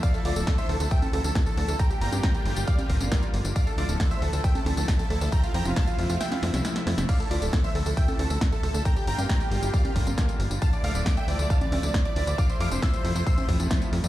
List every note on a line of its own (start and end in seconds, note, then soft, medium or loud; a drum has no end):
0.00 5.28 D3 medium
0.00 1.75 F3 medium
0.00 1.76 A3 medium
0.00 1.75 E4 medium
0.00 0.11 D5 medium
0.00 0.11 F5 loud
0.00 kick loud
0.00 closed hi-hat medium
0.00 tambourine medium
0.14 0.22 A4 medium
0.14 closed hi-hat medium
0.14 tambourine soft
0.25 0.34 D2 loud
0.25 0.33 F4 medium
0.25 0.33 D5 medium
0.25 open hi-hat loud
0.36 0.45 D1 medium
0.36 0.44 A4 medium
0.36 closed hi-hat soft
0.36 tambourine medium
0.47 0.55 A4 medium
0.47 0.56 A4 medium
0.47 kick loud
0.47 snare loud
0.47 closed hi-hat medium
0.47 tambourine medium
0.58 0.66 C5 medium
0.58 0.66 E5 medium
0.58 0.67 E5 medium
0.58 closed hi-hat medium
0.58 tambourine soft
0.69 0.78 D2 medium
0.69 0.77 A4 medium
0.69 0.78 A4 medium
0.69 open hi-hat medium
0.80 0.89 D2 medium
0.80 0.88 A4 medium
0.80 0.89 A4 medium
0.80 closed hi-hat soft
0.80 tambourine medium
0.91 0.99 E5 medium
0.91 0.99 G5 medium
0.91 1.00 G5 loud
0.91 kick loud
0.91 closed hi-hat medium
0.91 tambourine medium
1.02 1.10 A4 medium
1.02 1.11 A4 medium
1.02 closed hi-hat medium
1.02 tambourine soft
1.02 high conga medium
1.13 1.22 D2 loud
1.13 1.22 A4 medium
1.13 open hi-hat loud
1.13 high conga medium
1.24 1.33 D2 medium
1.24 1.33 A4 medium
1.24 closed hi-hat medium
1.24 tambourine medium
1.35 kick loud
1.35 snare loud
1.35 closed hi-hat medium
1.46 1.55 A4 medium
1.46 closed hi-hat medium
1.46 tambourine soft
1.57 1.66 D2 loud
1.57 1.66 A4 medium
1.57 open hi-hat medium
1.68 1.77 D2 medium
1.68 1.77 A4 medium
1.68 closed hi-hat medium
1.68 tambourine medium
1.79 3.54 G3 medium
1.79 3.54 A#3 medium
1.79 3.54 F4 medium
1.79 1.88 G5 medium
1.79 1.88 A#5 medium
1.79 kick loud
1.79 closed hi-hat medium
1.79 tambourine medium
1.90 1.99 G4 medium
1.90 closed hi-hat medium
1.90 tambourine soft
2.01 2.10 G1 loud
2.01 2.10 G5 medium
2.01 2.10 A#5 medium
2.01 open hi-hat loud
2.12 2.21 G2 medium
2.12 2.21 G4 medium
2.12 closed hi-hat medium
2.12 tambourine medium
2.12 high conga medium
2.23 2.32 G5 medium
2.23 2.32 A#5 loud
2.23 kick loud
2.23 snare loud
2.23 closed hi-hat medium
2.23 tambourine medium
2.34 2.43 G4 medium
2.34 closed hi-hat medium
2.34 tambourine soft
2.45 2.54 G1 loud
2.45 2.54 G4 medium
2.45 open hi-hat medium
2.56 2.65 G1 medium
2.56 2.65 G4 medium
2.56 closed hi-hat medium
2.56 tambourine medium
2.67 2.76 D5 medium
2.67 2.76 F5 medium
2.67 kick loud
2.67 closed hi-hat medium
2.67 tambourine medium
2.79 2.87 G4 medium
2.79 closed hi-hat medium
2.79 tambourine soft
2.79 high conga medium
2.90 2.98 G1 loud
2.90 kick medium
2.90 open hi-hat loud
3.01 3.09 G1 medium
3.01 closed hi-hat medium
3.01 tambourine medium
3.01 high conga medium
3.12 kick loud
3.12 snare loud
3.12 closed hi-hat medium
3.12 tambourine medium
3.23 closed hi-hat medium
3.23 tambourine soft
3.34 3.42 G1 loud
3.34 open hi-hat medium
3.45 3.53 G1 medium
3.45 closed hi-hat medium
3.45 tambourine medium
3.56 8.81 F3 medium
3.56 5.31 A3 medium
3.56 8.81 E4 medium
3.56 3.64 D5 medium
3.56 3.64 F5 loud
3.56 kick loud
3.56 closed hi-hat medium
3.56 tambourine medium
3.67 3.75 A4 medium
3.67 closed hi-hat medium
3.67 tambourine soft
3.78 3.86 D2 loud
3.78 3.86 F4 medium
3.78 3.86 D5 loud
3.78 3.86 D5 medium
3.78 open hi-hat loud
3.89 3.97 D1 medium
3.89 3.97 A4 medium
3.89 closed hi-hat medium
3.89 tambourine medium
4.00 4.08 A4 medium
4.00 kick loud
4.00 snare loud
4.00 closed hi-hat medium
4.00 tambourine medium
4.11 4.19 C5 medium
4.11 4.19 E5 loud
4.11 4.19 E5 medium
4.11 closed hi-hat medium
4.11 tambourine soft
4.22 4.30 D2 medium
4.22 4.30 A4 medium
4.22 open hi-hat medium
4.33 4.41 D2 medium
4.33 4.41 A4 medium
4.33 4.42 A4 medium
4.33 closed hi-hat medium
4.33 tambourine medium
4.44 4.52 E5 medium
4.44 4.52 G5 loud
4.44 kick loud
4.44 closed hi-hat medium
4.44 tambourine medium
4.55 4.63 A4 medium
4.55 4.64 A4 medium
4.55 closed hi-hat medium
4.55 tambourine soft
4.55 high conga medium
4.66 4.75 D2 loud
4.66 4.74 A4 medium
4.66 4.75 A4 medium
4.66 open hi-hat loud
4.66 high conga medium
4.77 4.86 D2 medium
4.77 4.85 A4 medium
4.77 4.86 A4 medium
4.77 closed hi-hat medium
4.77 tambourine medium
4.88 kick loud
4.88 snare loud
4.88 closed hi-hat medium
4.88 tambourine medium
4.99 5.08 A4 medium
4.99 closed hi-hat medium
4.99 tambourine soft
5.10 5.19 D2 medium
5.10 5.19 A4 medium
5.10 open hi-hat medium
5.21 5.30 D2 medium
5.21 5.30 A4 medium
5.21 closed hi-hat medium
5.21 tambourine medium
5.32 7.07 C3 medium
5.32 8.82 A3 medium
5.32 5.41 G5 medium
5.32 5.41 A#5 medium
5.32 kick loud
5.32 closed hi-hat medium
5.32 tambourine medium
5.43 5.52 F4 medium
5.43 closed hi-hat medium
5.43 tambourine soft
5.54 5.63 F2 loud
5.54 5.63 G5 medium
5.54 5.63 A#5 medium
5.54 open hi-hat loud
5.65 5.74 F1 medium
5.65 5.74 F4 medium
5.65 closed hi-hat medium
5.65 tambourine medium
5.65 high conga medium
5.76 5.85 F5 medium
5.76 5.85 A5 medium
5.76 kick loud
5.76 snare loud
5.76 closed hi-hat medium
5.76 tambourine medium
5.87 5.96 F4 medium
5.87 closed hi-hat medium
5.87 tambourine soft
5.98 6.07 F2 medium
5.98 6.07 F4 medium
5.98 open hi-hat medium
6.09 6.18 F2 medium
6.09 6.18 F4 medium
6.09 closed hi-hat medium
6.09 tambourine medium
6.20 6.29 E5 medium
6.20 6.29 G5 medium
6.20 snare medium
6.20 closed hi-hat medium
6.20 tambourine medium
6.31 6.40 F4 medium
6.31 snare medium
6.31 closed hi-hat medium
6.31 tambourine soft
6.31 high conga medium
6.43 6.51 F2 loud
6.43 snare medium
6.43 open hi-hat loud
6.54 6.62 C2 medium
6.54 snare medium
6.54 closed hi-hat medium
6.54 tambourine medium
6.54 high conga medium
6.65 snare medium
6.65 closed hi-hat medium
6.65 tambourine medium
6.76 snare medium
6.76 closed hi-hat medium
6.76 tambourine soft
6.87 6.95 F2 loud
6.87 snare loud
6.87 open hi-hat medium
6.98 7.06 F1 medium
6.98 snare medium
6.98 closed hi-hat medium
6.98 tambourine medium
6.98 high conga medium
7.09 8.83 D3 medium
7.09 7.17 D5 medium
7.09 7.17 F5 loud
7.09 kick loud
7.09 closed hi-hat medium
7.09 crash medium
7.09 tambourine medium
7.20 7.28 A4 medium
7.20 closed hi-hat medium
7.20 tambourine soft
7.31 7.39 D2 medium
7.31 7.39 F4 medium
7.31 7.39 D5 medium
7.31 open hi-hat loud
7.42 7.50 D1 medium
7.42 7.50 A4 medium
7.42 closed hi-hat medium
7.42 tambourine medium
7.53 7.61 A4 medium
7.53 kick loud
7.53 snare loud
7.53 closed hi-hat medium
7.53 tambourine soft
7.64 7.72 C5 medium
7.64 7.72 E5 loud
7.64 7.72 E5 medium
7.64 closed hi-hat medium
7.64 tambourine soft
7.75 7.83 D2 medium
7.75 7.83 A4 medium
7.75 7.84 A4 medium
7.75 open hi-hat medium
7.86 7.94 D2 medium
7.86 7.94 A4 medium
7.86 7.95 A4 medium
7.86 closed hi-hat medium
7.86 tambourine medium
7.97 8.06 E5 medium
7.97 8.05 G5 loud
7.97 8.06 G5 loud
7.97 kick loud
7.97 closed hi-hat medium
7.97 tambourine soft
8.08 8.16 A4 medium
8.08 8.17 A4 medium
8.08 closed hi-hat medium
8.08 tambourine soft
8.08 high conga medium
8.19 8.28 D2 medium
8.19 8.28 A4 medium
8.19 open hi-hat loud
8.19 high conga medium
8.30 8.39 D2 medium
8.30 8.39 A4 medium
8.30 closed hi-hat medium
8.30 tambourine medium
8.41 kick loud
8.41 snare loud
8.41 closed hi-hat medium
8.41 tambourine medium
8.52 8.61 A4 medium
8.52 closed hi-hat medium
8.52 tambourine soft
8.63 8.72 D2 medium
8.63 8.72 A4 medium
8.63 open hi-hat loud
8.74 8.83 D2 medium
8.74 8.83 A4 medium
8.74 closed hi-hat medium
8.74 tambourine medium
8.85 12.35 D3 medium
8.85 10.60 G3 medium
8.85 10.60 A#3 medium
8.85 10.60 F4 medium
8.85 8.94 G5 medium
8.85 8.94 A#5 medium
8.85 kick loud
8.85 closed hi-hat medium
8.85 tambourine medium
8.96 9.05 G4 medium
8.96 closed hi-hat medium
8.96 tambourine soft
9.07 9.16 G1 medium
9.07 9.16 G5 medium
9.07 9.16 A#5 medium
9.07 open hi-hat loud
9.18 9.27 G2 medium
9.18 9.27 G4 medium
9.18 closed hi-hat medium
9.18 tambourine medium
9.18 high conga medium
9.29 9.38 G5 medium
9.29 9.38 A#5 loud
9.29 9.38 A#5 medium
9.29 kick loud
9.29 snare loud
9.29 closed hi-hat medium
9.29 tambourine medium
9.40 9.49 G4 medium
9.40 closed hi-hat medium
9.40 tambourine soft
9.51 9.60 G1 medium
9.51 9.60 G4 medium
9.51 open hi-hat loud
9.62 9.71 G1 medium
9.62 9.71 G4 medium
9.62 closed hi-hat medium
9.62 tambourine medium
9.74 9.82 D5 medium
9.74 9.82 F5 medium
9.74 kick loud
9.74 closed hi-hat medium
9.74 tambourine soft
9.85 9.93 G4 medium
9.85 closed hi-hat medium
9.85 tambourine soft
9.85 high conga medium
9.96 10.04 G1 loud
9.96 kick medium
9.96 open hi-hat loud
10.07 10.15 G1 medium
10.07 closed hi-hat medium
10.07 tambourine medium
10.07 high conga medium
10.18 kick loud
10.18 snare loud
10.18 closed hi-hat medium
10.18 tambourine medium
10.29 closed hi-hat medium
10.29 tambourine soft
10.40 10.48 G1 medium
10.40 open hi-hat loud
10.51 10.59 G1 medium
10.51 closed hi-hat medium
10.51 tambourine medium
10.62 14.08 F3 medium
10.62 12.36 A3 medium
10.62 14.08 E4 medium
10.62 10.70 F5 medium
10.62 10.70 A5 loud
10.62 kick loud
10.62 closed hi-hat medium
10.62 tambourine medium
10.73 10.81 D5 medium
10.73 closed hi-hat medium
10.73 tambourine soft
10.84 10.92 D2 loud
10.84 10.92 D5 medium
10.84 10.92 F5 loud
10.84 open hi-hat loud
10.95 11.03 D1 medium
10.95 11.03 D5 medium
10.95 closed hi-hat medium
10.95 tambourine medium
11.06 11.14 D5 medium
11.06 kick loud
11.06 snare loud
11.06 closed hi-hat medium
11.06 tambourine medium
11.17 11.25 E5 medium
11.17 11.25 G5 loud
11.17 11.25 G5 medium
11.17 closed hi-hat medium
11.17 tambourine soft
11.28 11.36 D2 loud
11.28 11.36 D5 medium
11.28 11.37 D5 medium
11.28 open hi-hat loud
11.39 11.47 D2 medium
11.39 11.47 D5 medium
11.39 11.48 D5 medium
11.39 closed hi-hat medium
11.39 tambourine medium
11.50 11.59 F5 medium
11.50 11.59 A5 loud
11.50 11.59 A5 medium
11.50 kick loud
11.50 closed hi-hat medium
11.50 tambourine medium
11.61 11.70 D5 medium
11.61 closed hi-hat medium
11.61 tambourine soft
11.61 high conga medium
11.72 11.80 D2 medium
11.72 11.81 D5 medium
11.72 open hi-hat loud
11.72 high conga medium
11.83 11.91 D2 medium
11.83 11.92 D5 medium
11.83 closed hi-hat medium
11.83 tambourine medium
11.94 kick loud
11.94 snare loud
11.94 closed hi-hat medium
11.94 tambourine medium
12.05 12.14 D5 medium
12.05 closed hi-hat medium
12.05 tambourine soft
12.16 12.25 D2 loud
12.16 12.25 D5 medium
12.16 open hi-hat loud
12.27 12.36 D2 medium
12.27 12.36 D5 medium
12.27 closed hi-hat medium
12.27 tambourine medium
12.38 14.08 C3 medium
12.38 14.08 A3 medium
12.38 12.47 F5 medium
12.38 12.47 D6 medium
12.38 kick loud
12.38 closed hi-hat medium
12.38 tambourine medium
12.49 12.58 C5 medium
12.49 closed hi-hat soft
12.49 tambourine soft
12.60 12.69 F2 loud
12.60 12.69 F5 medium
12.60 12.69 D6 medium
12.60 open hi-hat loud
12.71 12.80 F1 medium
12.71 12.80 C5 medium
12.71 closed hi-hat medium
12.71 tambourine medium
12.71 high conga medium
12.82 12.91 C6 medium
12.82 12.91 E6 medium
12.82 kick loud
12.82 snare loud
12.82 closed hi-hat medium
12.94 13.02 C5 medium
12.94 closed hi-hat medium
12.94 tambourine soft
13.04 13.13 F2 medium
13.04 13.13 C5 medium
13.04 open hi-hat loud
13.15 13.24 F2 medium
13.15 13.24 C5 medium
13.15 closed hi-hat soft
13.15 tambourine medium
13.27 13.35 C6 medium
13.27 13.35 E6 medium
13.27 kick loud
13.27 closed hi-hat medium
13.27 tambourine medium
13.38 13.46 C5 medium
13.38 closed hi-hat medium
13.38 tambourine soft
13.38 high conga medium
13.49 13.57 F2 loud
13.49 kick medium
13.49 open hi-hat loud
13.60 13.68 F2 medium
13.60 closed hi-hat medium
13.60 tambourine medium
13.60 high conga medium
13.71 kick loud
13.71 snare loud
13.71 closed hi-hat medium
13.71 tambourine medium
13.82 closed hi-hat medium
13.82 tambourine soft
13.93 14.01 F2 loud
13.93 open hi-hat loud
14.04 14.08 F2 medium
14.04 closed hi-hat medium
14.04 tambourine medium